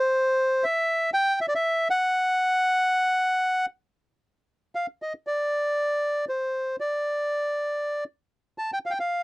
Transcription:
0.00 C5
0.64 E5
1.14 G5
1.41 E5
1.48 D5
1.55 E5
1.90 F#5
4.75 F5
5.02 D#5
5.27 D5
6.29 C5
6.80 D5
8.58 A5
8.73 G5
8.86 F5
8.91 G5
9.00 F5

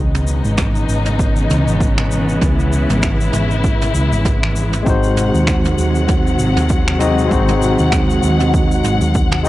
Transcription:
Already playing: C#2 C#3 E3 G#3 B3 D#4
0.15 mid tom, shaker
0.27 shaker
0.45 G#1, shaker
0.57 finger snap, kick, mid tom, shaker
0.75 shaker
0.89 G#1, shaker
1.06 mid tom, shaker
1.19 kick, shaker
1.36 shaker
1.50 C#2, mid tom, shaker
1.67 G#1, shaker
1.80 kick, shaker
1.98 finger snap, mid tom
2.11 shaker
2.29 shaker
2.41 C#2 E4, kick, mid tom, shaker
2.59 shaker
2.73 shaker
2.90 G#1, mid tom, shaker
3.02 finger snap, kick, shaker
3.21 shaker
3.33 G#1, mid tom, shaker
3.51 shaker
3.64 kick, shaker
3.82 mid tom, shaker
3.94 C#2, shaker
4.12 G#1, shaker
4.25 kick, mid tom, shaker
4.43 finger snap
4.56 shaker
4.73 mid tom, shaker
4.83 G#1 C3 D#3 F#3 G#3 C4 D#4 F#5, kick
4.87 F#4 C5, shaker
5.03 shaker
5.17 mid tom, shaker
5.34 D#2, shaker
5.47 finger snap, kick, shaker
5.65 mid tom, shaker
5.78 D#2, shaker
5.95 shaker
6.08 kick, mid tom, shaker
6.27 shaker
6.39 G#1, shaker
6.57 D#2, mid tom, shaker
6.69 kick, shaker
6.88 finger snap
6.99 G#3 C4 D#4 F#4 D#5, mid tom, shaker
7.19 shaker
7.27 G#1 G#3 C4 D#4, kick
7.32 F#4 C5, shaker
7.48 mid tom, shaker
7.62 shaker
7.79 D#2, shaker
7.92 finger snap, kick, mid tom, shaker
8.10 shaker
8.23 D#2, shaker
8.40 mid tom, shaker
8.54 kick, shaker
8.71 shaker
8.84 G#1, mid tom, shaker
9.01 D#2, shaker
9.15 kick, shaker
9.32 finger snap, mid tom
9.43 G#3 C4 D#4, shaker

